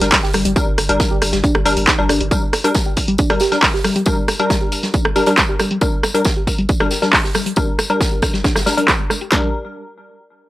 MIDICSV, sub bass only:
0, 0, Header, 1, 2, 480
1, 0, Start_track
1, 0, Key_signature, -2, "minor"
1, 0, Tempo, 437956
1, 614, Time_signature, 4, 2, 24, 8
1, 11500, End_track
2, 0, Start_track
2, 0, Title_t, "Sub bass"
2, 0, Program_c, 0, 38
2, 16, Note_on_c, 0, 31, 81
2, 131, Note_off_c, 0, 31, 0
2, 257, Note_on_c, 0, 31, 80
2, 367, Note_off_c, 0, 31, 0
2, 374, Note_on_c, 0, 31, 101
2, 491, Note_off_c, 0, 31, 0
2, 497, Note_on_c, 0, 31, 82
2, 612, Note_off_c, 0, 31, 0
2, 737, Note_on_c, 0, 31, 77
2, 847, Note_off_c, 0, 31, 0
2, 854, Note_on_c, 0, 31, 91
2, 971, Note_off_c, 0, 31, 0
2, 977, Note_on_c, 0, 31, 83
2, 1092, Note_off_c, 0, 31, 0
2, 1218, Note_on_c, 0, 31, 78
2, 1328, Note_off_c, 0, 31, 0
2, 1335, Note_on_c, 0, 31, 99
2, 1451, Note_off_c, 0, 31, 0
2, 1458, Note_on_c, 0, 31, 83
2, 1572, Note_off_c, 0, 31, 0
2, 1698, Note_on_c, 0, 31, 78
2, 1808, Note_off_c, 0, 31, 0
2, 1814, Note_on_c, 0, 31, 98
2, 1930, Note_off_c, 0, 31, 0
2, 1936, Note_on_c, 0, 31, 80
2, 2051, Note_off_c, 0, 31, 0
2, 2176, Note_on_c, 0, 31, 81
2, 2287, Note_off_c, 0, 31, 0
2, 2294, Note_on_c, 0, 31, 102
2, 2411, Note_off_c, 0, 31, 0
2, 2417, Note_on_c, 0, 31, 83
2, 2532, Note_off_c, 0, 31, 0
2, 11500, End_track
0, 0, End_of_file